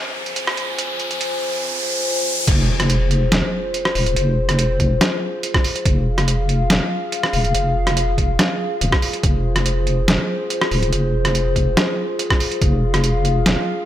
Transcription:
Already playing: F4 C5 G#5, riser
0.26 closed hi-hat
0.36 closed hi-hat
0.47 cross-stick
0.57 closed hi-hat
0.78 closed hi-hat
1.00 closed hi-hat
1.11 closed hi-hat
1.21 closed hi-hat
2.47 F1 F4 G#4 C5, kick, closed hi-hat, crash, impact
2.80 cross-stick, closed hi-hat
2.90 closed hi-hat
3.11 closed hi-hat
3.32 F1, snare, closed hi-hat
3.74 closed hi-hat
3.85 cross-stick
3.95 D#1, open hi-hat
4.06 closed hi-hat
4.16 F1, closed hi-hat
4.49 cross-stick, closed hi-hat
4.59 closed hi-hat
4.80 kick, closed hi-hat
5.01 cross-stick, snare, closed hi-hat
5.43 closed hi-hat
5.54 kick, cross-stick
5.64 open hi-hat
5.76 closed hi-hat
5.85 F1 F5, kick, closed hi-hat
6.18 cross-stick, closed hi-hat
6.28 closed hi-hat
6.49 closed hi-hat
6.70 F1, snare, closed hi-hat
7.12 closed hi-hat
7.23 cross-stick
7.33 D#1, open hi-hat
7.45 closed hi-hat
7.54 F1, closed hi-hat
7.87 cross-stick, closed hi-hat
7.97 closed hi-hat
8.18 kick, closed hi-hat
8.39 cross-stick, snare, closed hi-hat
8.81 D#1, closed hi-hat
8.92 kick, cross-stick
9.02 open hi-hat
9.13 closed hi-hat
9.23 F1 C5, kick, closed hi-hat
9.56 cross-stick, closed hi-hat
9.66 closed hi-hat
9.87 closed hi-hat
10.08 F1, snare, closed hi-hat
10.50 closed hi-hat
10.61 cross-stick
10.71 D#1, open hi-hat
10.83 closed hi-hat
10.93 F1, closed hi-hat
11.25 cross-stick, closed hi-hat
11.35 closed hi-hat
11.56 kick, closed hi-hat
11.77 cross-stick, snare, closed hi-hat
12.19 closed hi-hat
12.30 kick, cross-stick
12.40 open hi-hat
12.52 closed hi-hat
12.61 F1 F5, kick, closed hi-hat
12.94 cross-stick, closed hi-hat
13.04 closed hi-hat
13.25 closed hi-hat
13.46 F1, snare, closed hi-hat

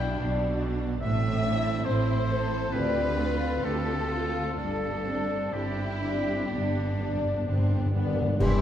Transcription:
Already playing: B2 G3 B3 D4 E4 G5
0.19 B1 B2 D4
0.59 B3 D4
1.01 A1 A2 C4 E5
1.44 E3 C4 D4 E4
1.85 A1 A2 E4 C5
2.28 E3 C4 E4 A4
2.72 D2 D3 C4 F4 G4 B4
3.18 A3 C4 F4
3.64 D2 F4 G4 A4
4.10 A3 C4 F4
4.56 G1 G2 D4 A4
5.05 D3 C4 D4
5.52 G1 G2 E4 G4
6.01 D3 C4 D4
6.50 G1 G2 B3 D4
6.59 G2
6.69 G2
6.77 G2
6.88 G2
6.97 G2 D3 B3 D4
7.07 G2
7.15 G2
7.25 G2
7.33 G2
7.41 G2
7.47 G1 G2 C4 G4
7.51 G2
7.58 G2
7.68 G2
7.78 G2
7.86 G2
7.95 G2 D3 B3 D4
8.06 G2
8.14 G2
8.22 G2
8.29 G2
8.39 C2 C3 E3 G3 E4 G4 C6, concert bass drum, crash

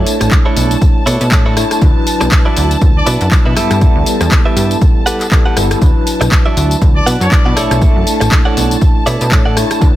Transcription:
Already playing: A3 D4 E4 C#5 A5
0.07 open hi-hat, tambourine
0.21 A1, muted clean electric guitar stroke, cross-stick, closed hi-hat, tambourine
0.31 muted clean electric guitar stroke, kick, clap, closed hi-hat, tambourine
0.45 D4 E4 A4 C#5
0.57 B1, open hi-hat, tambourine
0.71 closed hi-hat, tambourine
0.82 kick, closed hi-hat, tambourine
1.06 B2 D4 E4 A4 C#5, open hi-hat, tambourine
1.21 B2, closed hi-hat, tambourine
1.32 A2 A3 D4 E4, kick, clap, closed hi-hat, tambourine
1.46 D4 E4 A4 C#5
1.57 A3 D4 E4 C#5, cross-stick, open hi-hat, tambourine
1.71 muted clean electric guitar stroke, cross-stick, closed hi-hat, tambourine
1.81 D2 F#3 D4 B4, kick, closed hi-hat, tambourine
2.07 open hi-hat, tambourine
2.21 B1, muted clean electric guitar stroke, cross-stick, closed hi-hat, tambourine
2.31 muted clean electric guitar stroke, kick, clap, closed hi-hat, tambourine
2.45 E4 F#4 B4 D5
2.57 D2, open hi-hat, tambourine
2.71 closed hi-hat, tambourine
2.81 D2, kick, closed hi-hat, tambourine
2.96 D5
3.06 B2 E4 F#4 B4 D5, open hi-hat, tambourine
3.21 F#2, closed hi-hat, tambourine
3.31 F#3 D4 E4 B4, kick, clap, closed hi-hat, tambourine
3.45 B2 E4 F#4 B4 E5
3.56 G2 G3 B3 E4 G4 A4 B4 E5, cross-stick, open hi-hat, tambourine
3.70 G2, cross-stick, closed hi-hat, tambourine
3.80 G3 B3 E4 A4, kick, closed hi-hat, tambourine
3.96 D2
4.06 open hi-hat, tambourine
4.21 E2, muted clean electric guitar stroke, cross-stick, closed hi-hat, tambourine
4.31 muted clean electric guitar stroke, kick, clap, closed hi-hat, tambourine
4.46 G4 A4 B4 E5
4.56 G2, open hi-hat, tambourine
4.71 closed hi-hat, tambourine
4.82 kick, closed hi-hat, tambourine
5.06 G4 A4 B4 F#5, open hi-hat, tambourine
5.21 clap, closed hi-hat, tambourine
5.31 G3 B3 E4 A4, kick, clap, closed hi-hat, tambourine
5.46 G4 A4 B4 F#5
5.56 G1 G3 B3 E4 A4, cross-stick, open hi-hat, tambourine
5.71 muted clean electric guitar stroke, cross-stick, closed hi-hat, tambourine
5.81 D2 F#3 D4 E4 A5, kick, closed hi-hat, tambourine
6.07 open hi-hat, tambourine
6.21 B1, muted clean electric guitar stroke, cross-stick, closed hi-hat, tambourine
6.31 muted clean electric guitar stroke, kick, clap, closed hi-hat, tambourine
6.46 F#4 B4 D5 E5
6.57 D2, open hi-hat, tambourine
6.71 closed hi-hat, tambourine
6.82 D2, kick, closed hi-hat, tambourine
6.96 D5
7.06 B2 F#4 B4 D5 F#5, open hi-hat, tambourine
7.20 F#2 D5, closed hi-hat, tambourine
7.31 F#3 D4 E4 B4, kick, clap, closed hi-hat, tambourine
7.45 B2 F#4 B4 D5 F#5
7.56 B1 A3 D4 E4 A4 C#5 D5 E5, cross-stick, open hi-hat, tambourine
7.71 B1, cross-stick, closed hi-hat, tambourine
7.80 A3 D4 E4 C#6, kick, closed hi-hat, tambourine
7.96 F#2
8.07 open hi-hat, tambourine
8.20 A1, muted clean electric guitar stroke, cross-stick, closed hi-hat, tambourine
8.31 muted clean electric guitar stroke, kick, clap, closed hi-hat, tambourine
8.45 A4 C#5 D5 F#5
8.57 B1, open hi-hat, tambourine
8.71 closed hi-hat, tambourine
8.81 kick, closed hi-hat, tambourine
9.06 B2 A4 C#5 D5 E5, open hi-hat, tambourine
9.21 B2, closed hi-hat, tambourine
9.31 A2 A3 D4 E4 C#5, kick, clap, closed hi-hat, tambourine
9.45 A4 C#5 D5 F#5
9.56 A3 D4 E4 C#5, cross-stick, open hi-hat, tambourine
9.71 muted clean electric guitar stroke, cross-stick, closed hi-hat, tambourine
9.80 D2 F#3 D4 E4 B4, kick, closed hi-hat, tambourine

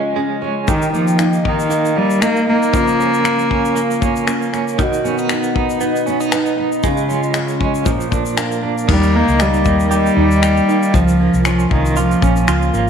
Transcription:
Already playing: C#3 F3 G#3 C#4 F4
0.16 G#3 C#4
0.42 G#3 C#4
0.67 D#3 G4, kick, shaker
0.82 shaker
0.92 F3 A#3 D#4, shaker
1.08 shaker
1.19 A#3 D#4, finger snap, shaker
1.33 shaker
1.45 D#3 A#3 D#4, kick
1.59 shaker
1.70 A#3 D#4, shaker
1.85 shaker
1.96 G3 A#3 D#4
2.10 shaker
2.22 A#3 D#4, finger snap, shaker
2.36 shaker
2.48 A#3 D#4
2.62 shaker
2.73 C#3 F3 F4, kick, shaker
2.88 shaker
2.99 A#3 C#4, shaker
3.14 shaker
3.25 A#3, finger snap, shaker
3.39 shaker
3.50 A#3 C#4, kick
3.65 shaker
3.76 A#3 C#4, shaker
3.91 shaker
4.01 A#3 C#4, kick, shaker
4.16 shaker
4.27 A#3 C#4, finger snap, shaker
4.42 shaker
4.53 A#3 C#4, finger snap, shaker
4.68 shaker
4.79 B2 D#3 F#4, kick, shaker
4.93 shaker
5.04 B3 C#4, shaker
5.18 D#4, shaker
5.29 B3 D#4, finger snap, shaker
5.43 shaker
5.55 B3 D#4, kick
5.70 shaker
5.81 B3 D#4, shaker
5.96 shaker
6.06 B3 C#4, shaker
6.20 D#4, shaker
6.32 B3 D#4, finger snap, shaker
6.46 shaker
6.58 B3 D#4
6.72 shaker
6.83 C#3 G#3 F4, kick, shaker
6.97 shaker
7.09 G#3 C#4, shaker
7.23 shaker
7.34 G#3 C#4, finger snap, shaker
7.48 shaker
7.60 G#3 C#4, kick
7.75 shaker
7.86 A#2 F3, kick, shaker
8.01 shaker
8.11 A#3 D4, kick, shaker
8.26 shaker
8.37 A#3 D4, finger snap, shaker
8.52 shaker
8.62 A#3 D4
8.78 shaker
8.88 D#2 D#3 G3, kick, crash
9.03 shaker
9.14 A#3 D#4
9.28 C#2, shaker
9.39 G3 D#4 G4, finger snap, shaker
9.54 shaker
9.65 D#2 A#3 D#4, kick, shaker
9.80 shaker
9.91 G3 A#3 G4, shaker
10.06 shaker
10.16 D#2 D#4
10.31 shaker
10.42 G4, finger snap, shaker
10.57 shaker
10.68 A#3 D#4, shaker
10.83 shaker
10.94 C#2 F3, kick, shaker
11.08 shaker
11.20 A#3 C#4
11.34 C2, shaker
11.45 F3 C#4 F4, finger snap, shaker
11.59 shaker
11.71 C2 D#3 A#3 C#4, kick
11.85 shaker
11.96 F3 A#3 F4, shaker
12.11 shaker
12.22 A#1 C#4, kick, shaker
12.36 shaker
12.47 C#2 F4, finger snap, shaker
12.62 shaker
12.73 G#1 A#3 C#4, shaker

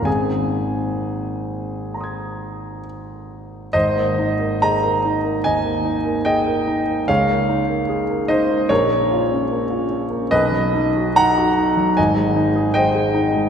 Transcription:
0.02 G#1 A#3 C4 D#4 G#5
0.07 G#4
1.94 A#5 C6
2.01 D#6 G#6
3.73 G#1 C5 D#5
3.96 A#3
4.19 D#4
4.40 A#4
4.62 G#4 D#5 A#5
4.83 A#4
5.05 D#4
5.25 A#3
5.44 D#2 D#5 G#5
5.65 A#3
5.85 D#4
6.06 A#4
6.25 G#4 D#5 G5
6.47 A#4
6.68 D#4
6.89 A#3
7.08 C#2 C#5 F5
7.30 A#3
7.49 D#4
7.69 A#4
7.89 G#4
8.10 A#4
8.28 D#4 C5 D#5
8.50 A#3
8.69 A#1 A#4 C#5
8.91 A#3
9.11 F4
9.32 C#4
9.51 A#3
9.70 F4
9.91 C#4
10.10 A#3
10.31 B1 B4 D#5
10.52 F#3
10.74 D#4
10.96 F#4
11.16 D#4 F#5 A#5
11.37 F#4
11.58 D#4
11.77 F#3
11.97 G#1 D#5 G#5
12.17 G#3
12.36 D#4
12.56 G#4
12.74 C5 D#5 G5
12.95 G#4
13.14 D#4
13.34 G#3

